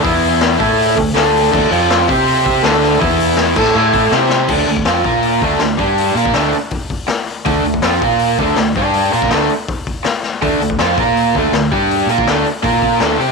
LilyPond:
<<
  \new Staff \with { instrumentName = "Overdriven electric guitar" } { \time 4/4 \key d \minor \tempo 4 = 162 <e b e'>4. <a e' a'>4 <d a>8 <d a d'>4 | <d a d'>8 <f c' f'>4 <c' g' c''>4. <d a d'>4 | <e b e'>4. <a e' a'>8 <a e' a'>4 <c' g' c''>4 | <d a d'>8 <d a>8 <f c' f'>8 <bes f' bes'>4 <d a d'>8 <d a>8 <g d' g'>8~ |
<g d' g'>8 <bes f' bes'>8 <d a d'>8 r2 r8 | <d a d'>8 <d a>8 <f c' f'>8 <bes f' bes'>4 <d a d'>8 <d a>8 <g d' g'>8~ | <g d' g'>8 <bes f' bes'>8 <d a d'>8 r2 r8 | <d a d'>8 <d a>8 <f c' f'>8 <bes f' bes'>4 <d a d'>8 <d a>8 <g d' g'>8~ |
<g d' g'>8 <bes f' bes'>8 <d a d'>8 r8 <bes f' bes'>4 <d a d'>8 <c' g' c''>8 | }
  \new Staff \with { instrumentName = "Fingered electric bass" } { \clef bass \time 4/4 \key d \minor e,4. a,4 d,8 d,4 | d,8 f,4 c4. d,4 | e,4. a,8 a,4 c4 | d,8 d,8 f,8 bes,4 d,8 d,8 g,8~ |
g,8 bes,8 d,8 r2 r8 | d,8 d,8 f,8 bes,4 d,8 d,8 g,8~ | g,8 bes,8 d,8 r2 r8 | d,8 d,8 f,8 bes,4 d,8 d,8 g,8~ |
g,8 bes,8 d,8 r8 bes,4 d,8 c8 | }
  \new DrumStaff \with { instrumentName = "Drums" } \drummode { \time 4/4 <hho bd>8 hho8 <hho sn>8 <hho bd>8 hho8 <hho bd>8 <hho sn>8 hho8 | <cymc bd>8 hho8 <hho sn>8 <hho bd>8 hho8 <hho bd>8 <hho sn>8 <hho sn>8 | <hho bd>8 hho8 <hho sn>8 <cymc bd>8 r8 <hho bd>8 sn8 sn8 | <cymc bd>8 hho16 bd16 <hho sn>8 <hho bd>8 hho8 <hho bd>8 <hho sn>8 <hho bd>8 |
hho8 hho16 bd16 <hho sn>8 hho8 <hho bd>8 <hho bd>8 <hho sn>8 hho8 | <hho bd>8 hho16 bd16 <hho sn>8 <hho bd>8 hho8 <hho bd>8 <hho sn>8 <hho bd>8 | hho8 hho16 <bd sn>16 <hho sn>8 hho8 <hho bd>8 <hho bd>8 <hho sn>8 sn8 | <hho bd>8 hho16 bd16 <hho sn>8 <hho bd>8 hho8 <hho bd>8 <hho sn>8 <hho bd>8 |
hho8 hho16 bd16 <hho sn>8 hho8 <hho bd>8 <hho bd>8 <hho sn>8 hho8 | }
>>